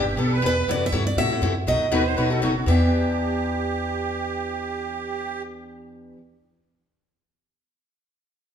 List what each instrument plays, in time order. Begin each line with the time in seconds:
Already playing: upright bass G1, accordion G4, steel-string acoustic guitar E5
0.16 upright bass B1, steel-string acoustic guitar E3 B3 D4 G4, accordion A4
0.32 accordion B4
0.42 upright bass E2, steel-string acoustic guitar E3 B3 D4 G4
0.46 steel-string acoustic guitar B4
0.67 upright bass F#2, steel-string acoustic guitar C3 E3 A3 E4 F#4
0.71 steel-string acoustic guitar D5
0.86 steel-string acoustic guitar E5
0.92 upright bass G2, steel-string acoustic guitar C3 E3 A3 E4 F#4
1.07 steel-string acoustic guitar D5
1.17 upright bass A2, steel-string acoustic guitar C3 E3 A3 E4 F#4 E5
1.32 steel-string acoustic guitar A3 E4 F#4
1.41 upright bass F#2, steel-string acoustic guitar C3 E3 A3 E4 F#4
1.67 upright bass B1, steel-string acoustic guitar B2 F#3 A3 D#4 F#4 D#5
1.91 upright bass D#2, steel-string acoustic guitar B2 F#3 A3 D#4 F#4, accordion B4
2.06 accordion C5
2.16 upright bass B1, steel-string acoustic guitar B2 F#3 A3 D#4 F#4, accordion B4
2.30 steel-string acoustic guitar A3 D#4 F#4, accordion A4
2.41 upright bass F#1, steel-string acoustic guitar B2 F#3 A3 D#4 F#4, accordion F#4
2.66 upright bass E2, steel-string acoustic guitar E3 B3 D4 E5, accordion G4
2.70 steel-string acoustic guitar G4